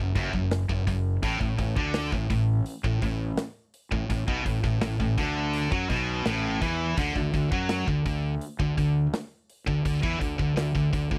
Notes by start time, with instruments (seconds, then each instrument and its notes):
Already playing: fingered electric bass F#1
0.00 distorted electric guitar F#2
0.15 fingered electric bass F#1, distorted electric guitar F#2, kick, open hi-hat
0.33 fingered electric bass F#1, distorted electric guitar F#2, kick
0.51 snare, open hi-hat
0.69 fingered electric bass F#1, distorted electric guitar F#2, kick
0.87 fingered electric bass F#1, distorted electric guitar F#2, kick, open hi-hat
1.22 fingered electric bass A1, distorted electric guitar A2, kick, open hi-hat
1.41 fingered electric bass A1, distorted electric guitar A2, kick
1.58 fingered electric bass A1, distorted electric guitar A2, kick, open hi-hat
1.77 fingered electric bass D2, distorted electric guitar D3, kick
1.94 snare, open hi-hat
2.12 fingered electric bass A1, distorted electric guitar A2, kick
2.30 fingered electric bass A1, distorted electric guitar A2, kick, open hi-hat
2.66 open hi-hat
2.84 fingered electric bass A1, distorted electric guitar A2, kick
3.02 fingered electric bass A1, distorted electric guitar A2, kick, open hi-hat
3.37 snare, open hi-hat
3.74 open hi-hat
3.91 fingered electric bass A1, distorted electric guitar A2, kick
4.09 fingered electric bass A1, distorted electric guitar A2, kick, open hi-hat
4.28 fingered electric bass B1, distorted electric guitar B2, kick
4.46 fingered electric bass A1, distorted electric guitar A2, kick, open hi-hat
4.63 fingered electric bass A1, distorted electric guitar A2, kick, snare
4.81 fingered electric bass A1, distorted electric guitar A2, snare, open hi-hat
4.99 fingered electric bass A1, distorted electric guitar A2, kick
5.18 fingered electric bass D2, distorted electric guitar D3, kick, open hi-hat
5.53 open hi-hat
5.72 fingered electric bass F#2, distorted electric guitar F#3, kick
5.89 fingered electric bass B1, distorted electric guitar B2, kick, open hi-hat
6.26 fingered electric bass A1, distorted electric guitar A2, snare, open hi-hat
6.61 fingered electric bass E2, distorted electric guitar E3, kick, open hi-hat
6.97 fingered electric bass D2, distorted electric guitar D3, kick, open hi-hat
7.16 fingered electric bass D2, distorted electric guitar D3, kick
7.33 fingered electric bass D2, distorted electric guitar D3, kick, open hi-hat
7.52 fingered electric bass F#2, distorted electric guitar F#3, kick
7.69 snare, open hi-hat
7.88 fingered electric bass D2, distorted electric guitar D3, kick
8.05 fingered electric bass D2, distorted electric guitar D3, kick, open hi-hat
8.41 open hi-hat
8.60 fingered electric bass D2, distorted electric guitar D3, kick
8.78 fingered electric bass D2, distorted electric guitar D3, kick, open hi-hat
9.14 snare, open hi-hat
9.50 open hi-hat
9.67 fingered electric bass D2, distorted electric guitar D3, kick
9.85 fingered electric bass D2, distorted electric guitar D3, kick, open hi-hat
10.03 fingered electric bass E2, distorted electric guitar E3, kick
10.20 fingered electric bass D2, distorted electric guitar D3, kick, open hi-hat
10.38 fingered electric bass D2, distorted electric guitar D3, kick
10.56 fingered electric bass D2, distorted electric guitar D3, snare, open hi-hat
10.75 fingered electric bass D2, distorted electric guitar D3, kick
10.93 fingered electric bass D2, distorted electric guitar D3, kick, open hi-hat
11.11 fingered electric bass D2, distorted electric guitar D3, kick